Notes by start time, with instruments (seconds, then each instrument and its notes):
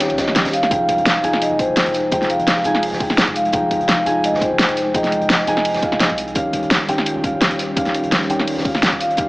Already playing: 808-style bass D#1, felt piano D#3 C#4 G4 F5 G5, ambient pad G3 C#4 F4, vibraphone C#5
0.00 snare, closed hi-hat
0.10 808-style bass C#2, closed hi-hat
0.17 felt piano D#3 C#4 G4 D#5, kick, snare, closed hi-hat
0.27 808-style bass A#1, snare
0.35 snare, closed hi-hat
0.45 808-style bass D#1, snare, closed hi-hat
0.53 vibraphone F5, closed hi-hat, open hi-hat
0.63 snare, closed hi-hat
0.70 808-style bass F1, felt piano F3 D#4 G#4 G5, ambient pad G#3 D#4, kick, closed hi-hat
0.89 kick, closed hi-hat
0.98 808-style bass F1, closed hi-hat
1.06 snare, closed hi-hat
1.23 808-style bass F1, felt piano F3 D#4 G#4 G#5, closed hi-hat, open hi-hat
1.33 snare
1.42 vibraphone D#5, closed hi-hat
1.51 808-style bass F1
1.58 felt piano F3 D#4 G#4 G5, vibraphone C5, kick, closed hi-hat
1.69 808-style bass F1
1.76 snare, closed hi-hat
1.86 808-style bass F1, closed hi-hat
1.94 snare, closed hi-hat, open hi-hat
2.11 808-style bass F1, felt piano F3 D#4 G#4 G5, vibraphone C5, kick, closed hi-hat
2.22 snare, closed hi-hat
2.29 vibraphone F5, closed hi-hat
2.39 808-style bass F1, closed hi-hat
2.47 snare, closed hi-hat
2.56 snare
2.64 808-style bass F1, felt piano F3 D#4 G#4 G#5, closed hi-hat, open hi-hat
2.75 snare
2.83 closed hi-hat, open hi-hat
2.92 808-style bass F1, snare
2.99 felt piano F3 D#4 G#4 G5, kick, closed hi-hat
3.10 808-style bass F1, snare
3.18 snare, closed hi-hat
3.27 808-style bass F1, kick, closed hi-hat
3.36 vibraphone F5, closed hi-hat, open hi-hat
3.45 closed hi-hat
3.52 808-style bass F1, felt piano F3 D#4 G#4 G5, kick, closed hi-hat
3.71 kick, closed hi-hat
3.80 808-style bass F1, closed hi-hat
3.88 snare, closed hi-hat
4.05 808-style bass F1, felt piano F3 D#4 G#4 G#5, closed hi-hat, open hi-hat
4.24 vibraphone D#5, closed hi-hat
4.33 808-style bass F1, snare
4.40 felt piano F3 D#4 G#4 G5, vibraphone C5, kick, closed hi-hat
4.51 808-style bass F1
4.59 snare, closed hi-hat
4.69 808-style bass F1, closed hi-hat
4.77 snare, closed hi-hat, open hi-hat
4.93 808-style bass F1, felt piano F3 D#4 G#4 G5, vibraphone D#5, kick, closed hi-hat
5.04 snare, closed hi-hat
5.12 closed hi-hat
5.21 808-style bass F1, closed hi-hat
5.30 snare, closed hi-hat
5.39 snare
5.47 808-style bass F1, felt piano F3 D#4 G#4 G#5, closed hi-hat, open hi-hat
5.57 snare
5.65 closed hi-hat, open hi-hat
5.74 808-style bass F1, snare, closed hi-hat
5.82 felt piano F3 D#4 G#4 F5, kick, closed hi-hat
5.92 808-style bass F1, snare
6.00 snare, closed hi-hat
6.10 808-style bass C2, kick, closed hi-hat
6.18 closed hi-hat, open hi-hat
6.28 closed hi-hat
6.34 808-style bass D#1, felt piano D#3 C#4 G4 F5, ambient pad G3 C#4 F4, kick, closed hi-hat
6.53 kick, closed hi-hat
6.63 808-style bass D#1, closed hi-hat
6.71 snare, closed hi-hat
6.88 808-style bass D#1, felt piano D#3 C#4 G4 G5, closed hi-hat, open hi-hat
6.98 snare
7.06 closed hi-hat
7.16 808-style bass D#1
7.23 felt piano D#3 C#4 G4 F5, kick, closed hi-hat
7.33 808-style bass D#1
7.41 snare, closed hi-hat
7.51 808-style bass D#1, closed hi-hat
7.58 snare, closed hi-hat, open hi-hat
7.76 808-style bass D#1, felt piano D#3 C#4 G4 F5, kick, closed hi-hat
7.85 snare, closed hi-hat
7.94 closed hi-hat
8.03 808-style bass D#1, closed hi-hat
8.12 snare, closed hi-hat
8.21 snare
8.29 808-style bass D#1, felt piano D#3 C#4 G4 G5, closed hi-hat, open hi-hat
8.39 snare
8.48 closed hi-hat, open hi-hat
8.57 808-style bass D#1, snare
8.64 felt piano D#3 C#4 G4 F5, kick, closed hi-hat
8.75 808-style bass D#1, snare
8.82 snare, closed hi-hat
8.92 808-style bass D#1, kick, closed hi-hat
9.00 vibraphone F5, closed hi-hat, open hi-hat
9.10 closed hi-hat
9.17 808-style bass D#1, felt piano D#3 C#4 G4 F5, kick, closed hi-hat